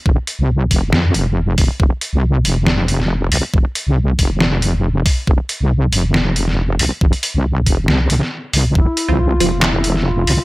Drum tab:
HH |--x---x---x---o-|--x---x---x---o-|--x---x---x---o-|--x---x---x---o-|
CP |----------------|----------------|----------------|----------------|
SD |--------o-------|--------o--o----|--------o-------|--------o--o----|
BD |o-----o-------o-|o---------------|o-----o-------o-|o---------------|

HH |-xx---x---x---o-|--x---x---x---o-|
CP |----------------|--------x-------|
SD |--------o--o----|--------o--o----|
BD |o-----o---------|o---------------|